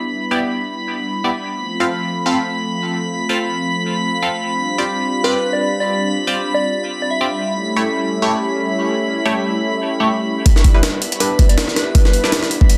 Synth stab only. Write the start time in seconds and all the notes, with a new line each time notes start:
0.31 B3 E4 G4 D5
1.24 B3 E4 G4 D5
1.80 C4 F4 A4 F5
2.26 C4 F4 A4 F5
3.29 C4 F4 A4 F5
4.22 C4 F4 A4 F5
4.78 C4 F4 G4 D5
5.24 C4 F4 G4 D5
6.27 C4 F4 G4 D5
7.21 C4 F4 G4 D5
7.76 A3 E4 G4 C#5
8.22 A3 E4 G4 C#5
9.25 A3 E4 G4 C#5
10.00 A3 E4 G4 C#5
10.74 G3 D4 E4 B4
11.20 G3 D4 E4 B4
12.24 G3 D4 E4 B4